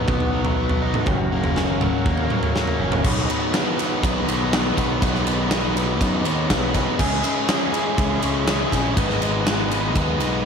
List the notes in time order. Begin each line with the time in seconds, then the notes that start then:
Already playing: B2 F#3 D#4 F#4 B4 F#5
0.08 B1 B3, kick, floor tom
0.20 floor tom
0.33 F#3
0.45 floor tom
0.57 B3
0.69 floor tom
0.82 D#4
0.94 floor tom, mid tom
1.06 F#1 F#2 F#5, kick, floor tom
1.10 C#4 A#4
1.32 A#3
1.44 floor tom
1.56 C#4, snare, floor tom
1.81 F#3, floor tom, mid tom
2.06 D#2 A#3, kick, floor tom
2.17 floor tom
2.30 F#3, mid tom
2.43 floor tom
2.55 A#3, snare, mid tom
2.67 floor tom
2.80 F#1 C#4
2.92 floor tom, mid tom
3.04 B1 B2 D#3 F#3 B3 D#4 G#4 B4 D#5 F#5 B5, kick, crash
3.17 snare
3.29 B2 D#3 F#3 B3 D#4 B4, ride
3.54 B2 D#3 F#3 B3 D#4 B4, snare, ride
3.78 B2 D#3 F#3 B3 D#4 B4, ride
4.02 B1 B2 D#3 F#3 B3 D#4 B4, kick, ride
4.27 B1 B2 D#3 F#3 B3 D#4 B4, ride
4.52 B2 D#3 F#3 B3 D#4 B4, snare, ride
4.77 B1 B2 D#3 F#3 B3 D#4 B4, kick, ride
5.02 B1 B2 D#3 F#3 B3 D#4 B4, kick, ride
5.15 snare
5.26 B2 D#3 F#3 B3 D#4 B4, ride
5.50 B2 D#3 F#3 B3 D#4 B4, snare, ride
5.75 B2 D#3 F#3 B3 D#4 B4, ride
6.00 F#2 B2 D#3 F#3 B3 D#4 B4, kick, ride
6.24 D#2 B2 D#3 F#3 B3 D#4 B4, ride
6.49 B1 B2 D#3 F#3 B3 D#4 B4, kick, snare, ride
6.73 C2 B2 D#3 F#3 B3 D#4 B4, kick, snare, ride
6.98 C#2 C#3 G#3 C#4 E4 G#4 E5 C#6, kick, crash
7.22 C#3 G#3 C#4 E4 G#4, ride
7.48 C#3 G#3 C#4 E4 G#4, snare, ride
7.72 C#3 G#3 C#4 E4 G#4, ride
7.97 C#2 C#3 G#3 C#4 E4 G#4, kick, ride
8.22 C#2 C#3 G#3 C#4 E4 G#4, ride
8.46 C#3 G#3 C#4 E4 G#4, snare, ride
8.72 A#1 C#3 G#3 C#4 E4 G#4, kick, snare, ride
8.96 G#1 G#2 D#3 G#3 B3 D#4 B4 D#5 G#5 D#6, kick, ride
9.10 snare
9.20 G#2 D#3 G#3 B3 D#4 B4, ride
9.45 G#2 D#3 G#3 B3 D#4 B4, snare, ride
9.69 G#2 D#3 G#3 B3 D#4 B4, ride
9.94 D#2 G#2 D#3 G#3 B3 D#4 B4, kick, ride
10.19 B1 G#2 D#3 G#3 B3 D#4 B4, ride